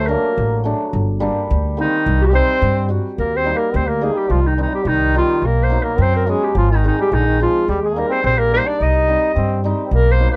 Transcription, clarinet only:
0.07 A#4
1.80 D#4
2.22 F#4 G4
2.27 G4
2.35 C5
3.19 A#4
3.37 C5
3.57 A#4
3.77 C5
3.88 A#4
4.03 G#4
4.17 G4
4.31 F4
4.47 D#4
4.62 D#4
4.74 G4
4.88 D#4
5.17 F4
5.46 A#4
5.64 C5
5.83 A#4
6.03 C5
6.16 A#4
6.30 G#4
6.44 G4
6.58 F4
6.72 D#4
6.88 D#4
7.01 G4
7.14 D#4
7.42 F4
7.70 G4
7.85 G#4
7.99 A#4
8.12 C5
8.26 C5
8.39 A#4
8.54 C5
8.67 D5
8.82 D#5
9.94 A#4
10.12 C5
10.31 A#4

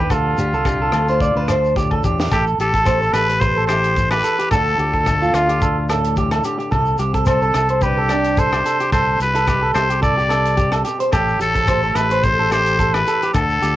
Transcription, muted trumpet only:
Already playing: G4
0.12 F4
2.33 G4
2.61 A4
3.13 B4
3.40 C5
3.67 C5
4.11 B4
4.52 A4
5.34 F4
7.28 A4
7.83 G4
8.39 C5
8.92 C5
9.22 B4
9.74 C5
10.03 D5
11.12 G4
11.41 A4
11.95 B4
12.23 C5
12.53 C5
12.93 B4
13.33 A4

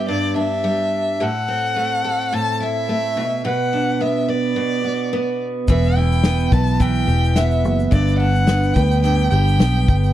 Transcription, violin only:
0.09 D5
0.37 E5
1.22 F#5
2.34 A5
2.63 E5
3.47 F#5
4.01 E5
4.29 D5
5.69 E5
5.96 G5
6.53 A5
6.81 G5
7.36 E5
7.92 D5
8.19 F#5
8.74 G5
9.02 G5
9.31 G5

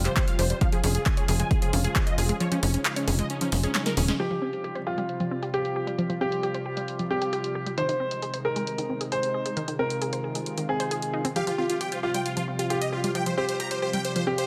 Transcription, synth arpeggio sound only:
0.05 G4
0.16 G4
0.39 G4
0.50 G3
0.61 F3
0.72 F3
0.84 C#4
1.06 G#4
1.17 C#5
1.28 G#4
1.40 G#3
1.62 F3
1.73 C#4
1.84 G#4
1.96 G#4
2.18 G#4
2.29 G#3
2.40 F3
2.51 F3
2.63 C#4
2.85 G#4
2.96 C#5
3.08 G#4
3.19 G#3
3.41 F3
3.52 C#4
3.63 G#4
3.75 G#4
3.97 G#4
4.08 G#3
4.19 F3
4.31 F3
4.42 C4
4.64 G4
4.75 C5
4.87 G4
4.98 G3
5.20 F3
5.31 C4
5.42 G4
5.54 G4
5.76 G4
5.87 G3
5.98 F3
6.10 F3
6.21 C4
6.43 G4
6.54 C5
6.66 G4
6.77 G3
6.99 F3
7.10 C4
7.22 G4
7.33 G4
7.55 G4
7.66 G3
7.78 D#3
7.89 D#3
8.00 C4
8.22 G#4
8.34 C5
8.45 G#4
8.56 G#3
8.78 D#3
8.90 C4
9.01 G#4
9.12 G#4
9.34 G#4
9.46 G#3
9.57 D#3
9.68 D#3
9.79 C4
10.02 G#4
10.13 C5
10.24 G#4
10.35 G#3
10.58 D#3
10.69 C4
10.80 C5
10.91 G#4
11.13 D#4
11.25 C4
11.36 F3
11.47 F3
11.58 C4
11.81 G4
11.92 C5
12.03 G4
12.14 G3
12.37 F3
12.48 C4
12.59 G4
12.70 G4
12.92 G4
13.04 G3
13.15 F3
13.26 F3
13.37 C4
13.60 G4
13.71 C5
13.82 G4
13.93 G3
14.16 F3
14.27 C4
14.38 G4

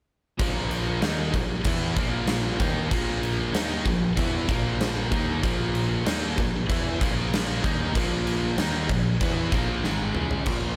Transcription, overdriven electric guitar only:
0.38 A#2 F3 A#3
1.02 D#3 A#3 D#4
1.35 A#2 F3
1.66 E3 B3 E4
1.96 A#2 F3 A#3
2.59 D#3 A#3 D#4
2.91 A#2 F3 A#3
3.54 D#3 A#3 D#4
3.85 A#2 F3
4.18 E3 B3 E4
4.49 A#2 F3 A#3
5.12 D#3 A#3 D#4
5.42 A#2 F3 A#3
6.04 D#3 A#3 D#4
6.37 A#2 F3
6.67 E3 B3 E4
6.99 A#2 F3 A#3
7.60 D#3 A#3 D#4
7.93 A#2 F3 A#3
8.57 D#3 A#3 D#4
8.89 A#2 F3
9.22 E3 B3 E4
9.52 A#2 F3 A#3
9.84 G#2 D#3 G#3
10.15 C#3 G#3 C#4
10.47 A#2 F3 A#3

